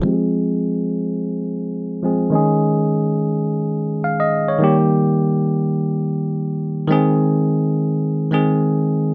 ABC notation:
X:1
M:4/4
L:1/16
Q:"Swing 16ths" 1/4=105
K:Fm
V:1 name="Tine electric piano"
z16 | z12 f e2 d- | d z12 z3 | z16 |]
V:2 name="Tine electric piano"
[F,A,CGA]12- [F,A,CGA]2 [F,A,CA]2 | [E,A,DA]12 z4 | [E,G,B,G]16 | [E,A,CA]8- [E,A,CA]2 [E,A,CA]6 |]